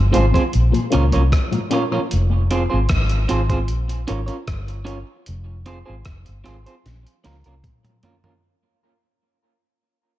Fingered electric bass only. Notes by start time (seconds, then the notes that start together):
Already playing: G1
0.16 G#1
0.55 A#1
0.95 C#2
1.15 C2
2.13 F1
2.74 G#1
2.91 G#1
3.31 G#1
3.71 A#1
4.10 G#1
4.48 G1
5.29 F1
5.89 G#1
6.06 F1
6.29 G1
6.47 G#1
6.86 A#1
7.26 C#2
7.46 C2